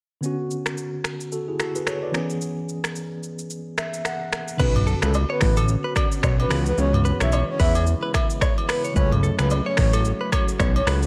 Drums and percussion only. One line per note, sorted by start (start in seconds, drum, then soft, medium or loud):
0.23 shaker medium
0.51 shaker soft
0.66 finger snap medium
0.66 cross-stick medium
0.66 shaker medium
0.78 shaker medium
1.04 finger snap medium
1.04 cross-stick medium
1.04 shaker soft
1.21 shaker medium
1.32 shaker medium
1.59 finger snap medium
1.59 cross-stick medium
1.59 shaker medium
1.75 shaker medium
1.87 finger snap medium
1.87 cross-stick medium
1.87 shaker medium
2.14 finger snap medium
2.14 cross-stick medium
2.14 shaker soft
2.30 shaker medium
2.41 shaker medium
2.69 shaker soft
2.84 finger snap medium
2.84 cross-stick medium
2.84 shaker medium
2.96 shaker medium
3.23 shaker soft
3.39 shaker medium
3.50 shaker medium
3.78 finger snap medium
3.78 cross-stick medium
3.78 shaker medium
3.94 shaker medium
4.05 finger snap medium
4.05 cross-stick medium
4.05 shaker medium
4.32 finger snap medium
4.32 cross-stick loud
4.32 shaker soft
4.48 shaker medium
4.60 kick loud
4.60 crash loud
4.60 shaker medium
4.75 mid tom medium
4.75 high agogo medium
4.87 shaker medium
5.02 finger snap medium
5.02 cross-stick medium
5.02 shaker medium
5.14 high agogo medium
5.14 low woodblock medium
5.14 shaker medium
5.41 finger snap medium
5.41 kick loud
5.41 cross-stick loud
5.41 open hi-hat medium
5.41 shaker medium
5.57 high agogo medium
5.57 shaker medium
5.68 shaker medium
5.96 finger snap medium
5.96 kick medium
5.96 cross-stick medium
5.96 high agogo medium
5.96 shaker medium
6.12 shaker medium
6.23 finger snap medium
6.23 kick loud
6.23 cross-stick medium
6.23 low woodblock medium
6.23 shaker medium
6.40 high agogo medium
6.51 finger snap medium
6.51 cross-stick loud
6.51 open hi-hat medium
6.51 shaker soft
6.66 shaker medium
6.78 shaker medium
6.93 mid tom medium
6.93 high agogo medium
7.05 shaker medium
7.20 finger snap medium
7.20 cross-stick loud
7.20 shaker medium
7.32 high agogo medium
7.32 low woodblock medium
7.32 shaker medium
7.60 kick loud
7.60 open hi-hat medium
7.60 shaker soft
7.75 high agogo medium
7.75 shaker medium
7.87 shaker medium
8.14 finger snap medium
8.14 kick medium
8.14 cross-stick medium
8.14 high agogo medium
8.14 shaker medium
8.30 shaker medium
8.41 finger snap medium
8.41 kick loud
8.41 cross-stick medium
8.41 low woodblock medium
8.41 shaker medium
8.58 high agogo medium
8.69 finger snap medium
8.69 cross-stick loud
8.69 open hi-hat medium
8.69 shaker soft
8.84 shaker medium
8.96 kick loud
8.96 shaker medium
9.12 mid tom medium
9.12 high agogo medium
9.23 shaker medium
9.39 finger snap medium
9.39 cross-stick medium
9.39 shaker medium
9.50 high agogo medium
9.50 low woodblock medium
9.50 shaker medium
9.77 finger snap medium
9.77 kick loud
9.77 cross-stick loud
9.77 open hi-hat medium
9.77 shaker medium
9.93 high agogo medium
9.93 shaker medium
10.05 shaker medium
10.32 finger snap medium
10.32 kick medium
10.32 cross-stick medium
10.32 high agogo medium
10.32 shaker medium
10.48 shaker medium
10.59 finger snap medium
10.59 kick loud
10.59 cross-stick medium
10.59 low woodblock medium
10.59 shaker medium
10.76 high agogo medium
10.87 finger snap medium
10.87 cross-stick loud
10.87 open hi-hat medium
10.87 shaker medium
11.03 shaker medium